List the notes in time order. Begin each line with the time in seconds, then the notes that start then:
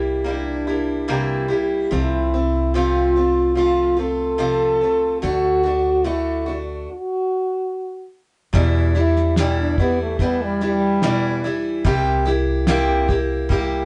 Already playing: C2 G3 A#3 E4 G4
0.24 G3 A#3 D4 E4 G4
0.67 G3 A#3 E4 G4
1.08 C3 E3 G3 A#3 E4 G4
1.48 G3 A#3 E4 G4
1.91 C2 C3 F3 A3 C4 E4
2.34 A3 C4
2.74 C3 F3 A3 C4 F4
3.16 A3 C4 F4
3.55 F3 A3 C4 F4
3.97 A3 C4 F4 A4
4.38 C3 F3 A3 C4 F4
4.81 A3 C4 F4
5.22 D2 D3 A3 D4 F#4
5.63 A3 D4 F#4
6.04 D3 A3 D4 E4 F#4
6.46 A3 D4 F#4
6.90 F#4
8.53 E2 B2 E3 G3 D4 E4, kick, snare
8.94 E3 G3 D4 E4, snare
8.98 E4
9.16 snare
9.36 E2 B2 E3 G3 D4 E4 G4, snare
9.60 D4
9.78 E3 G3 B3 D4 E4, kick, snare
10.03 A3
10.19 E3 G3 B3 D4, kick, snare
10.23 E4
10.43 G3
10.60 E3 G3 D4 E4, snare
10.65 G3
11.02 E2 B2 E3 G3 D4 E4, snare
11.44 E3 G3 D4 E4, snare
11.84 C2 C3 G3 A#3 E4 G4, kick, snare
12.25 A#3 E4 G4, snare
12.67 C3 G3 A#3 E4 G4, snare
13.08 A#3 E4 G4, kick, snare
13.49 G3 A#3 E4 G4, kick, snare